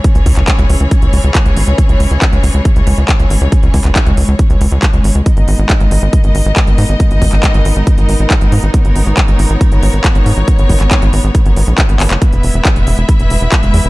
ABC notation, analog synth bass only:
X:1
M:4/4
L:1/16
Q:1/4=138
K:G#m
V:1 name="Analog synth bass" clef=bass
z C,, C,, C,, z C,, C,, C,, z C,, C,, C,, z C,, G,,, C,, | z C,, C,, C,, z C,, C,, C,, z C,, C,, C,, z C,, G,,, C,, | z C,, C,, C,, z C,, C,, C,, z C,, C,, C,, z C,, G,,, C,, | z G,,, G,,, G,,, z G,,, G,,, G,,, z G,,, G,,, G,,, z G,,, G,, G,,, |
z G,,, G,,, G,,, z G,,, G,,, G,,, z G,,, G,,, G,,, z G,,, G,, G,,, | z G,,, G,,, G,,, z G,,, G,,, G,,, z G,,, G,,, G,,, z G,,, G,, G,,, | z G,,, G,,, G,,, z G,,, G,,, G,,, z G,,, G,,, A,,, z G,,, G,,, F,,, | z E,,, E,,, E,,, z E,,, E,,, E,,, z E,,, E,,, E,,, z E,,, E,, E,,, |]